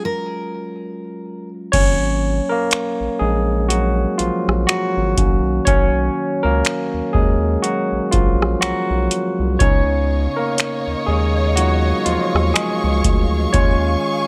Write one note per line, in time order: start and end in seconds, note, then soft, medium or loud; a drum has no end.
0.00 1.69 F#3 medium
0.00 1.69 G#3 medium
0.00 1.70 C#4 medium
0.00 1.73 F4 medium
0.05 1.49 A#4 medium
1.72 2.40 G#1 loud
1.72 2.41 F#3 medium
1.72 2.42 A#3 medium
1.72 2.47 C#4 medium
1.72 2.53 C#5 loud
1.72 kick loud
1.72 closed hi-hat medium
1.72 crash medium
2.49 3.17 A#3 medium
2.49 3.16 A#4 medium
2.71 finger snap loud
2.71 closed hi-hat medium
3.00 3.08 A#1 soft
3.19 4.06 A#1 loud
3.19 3.67 G#3 medium
3.19 3.66 G#4 medium
3.69 3.93 F#3 medium
3.69 3.91 F#4 medium
3.69 closed hi-hat medium
4.18 4.31 A#1 medium
4.18 4.42 F3 medium
4.18 4.40 F4 medium
4.18 closed hi-hat medium
4.48 4.66 A#1 medium
4.48 cross-stick medium
4.67 5.43 F#3 medium
4.67 5.41 F#4 medium
4.67 finger snap loud
4.67 closed hi-hat medium
4.97 5.15 G#1 medium
5.17 5.60 B1 medium
5.17 6.61 D#3 medium
5.17 6.44 A#3 medium
5.17 5.66 C#4 medium
5.17 kick medium
5.17 closed hi-hat medium
5.65 6.09 B1 loud
5.65 6.41 C#4 medium
5.65 6.40 C#5 loud
5.65 kick loud
5.65 closed hi-hat medium
6.43 6.62 C#2 medium
6.43 7.11 A#3 medium
6.43 7.16 A#4 medium
6.65 finger snap loud
6.65 closed hi-hat medium
6.94 7.02 D#2 soft
7.13 7.57 D#2 loud
7.13 7.37 G#3 medium
7.13 7.35 G#4 medium
7.13 kick medium
7.62 8.10 F#3 medium
7.62 8.14 F#4 medium
7.62 closed hi-hat medium
7.92 8.00 A#1 soft
8.11 8.55 A#1 loud
8.11 8.59 F3 medium
8.11 8.58 F4 medium
8.11 kick medium
8.11 closed hi-hat medium
8.42 cross-stick medium
8.61 8.73 B1 soft
8.61 9.36 F#3 medium
8.61 9.35 F#4 medium
8.61 finger snap loud
8.61 closed hi-hat medium
8.90 9.08 B1 medium
9.11 closed hi-hat medium
9.39 9.57 C2 medium
9.59 10.27 C#2 loud
9.59 13.49 C#3 medium
9.59 11.56 B3 medium
9.59 10.34 C#4 medium
9.59 11.56 D#4 medium
9.59 10.40 C#5 loud
9.59 13.50 C#5 medium
9.59 13.50 D#5 medium
9.59 14.27 F5 medium
9.59 14.27 C#6 medium
9.59 kick loud
9.59 closed hi-hat medium
10.36 11.04 A#3 medium
10.36 11.09 A#4 medium
10.58 finger snap loud
10.58 closed hi-hat medium
10.87 10.95 D#2 soft
11.06 11.93 D#2 medium
11.06 11.54 G#3 medium
11.06 11.58 G#4 medium
11.56 12.03 F#3 medium
11.56 12.02 B3 soft
11.56 12.02 D#4 medium
11.56 12.02 F4 medium
11.56 12.07 F#4 medium
11.56 closed hi-hat medium
12.05 12.18 D#2 medium
12.05 12.52 F3 medium
12.05 12.51 F4 medium
12.05 closed hi-hat medium
12.34 12.52 D#2 medium
12.34 cross-stick medium
12.54 13.29 G#3 medium
12.54 13.28 G#4 medium
12.54 finger snap loud
12.54 closed hi-hat medium
12.84 13.01 C#2 medium
13.04 13.47 D2 medium
13.04 kick loud
13.04 closed hi-hat medium
13.53 13.96 D#2 loud
13.53 14.27 D#3 medium
13.53 14.27 G#3 medium
13.53 14.27 C#4 medium
13.53 14.27 F4 medium
13.53 14.27 G#4 medium
13.53 14.27 C#5 loud
13.53 14.27 G#5 medium
13.53 kick loud
13.53 closed hi-hat medium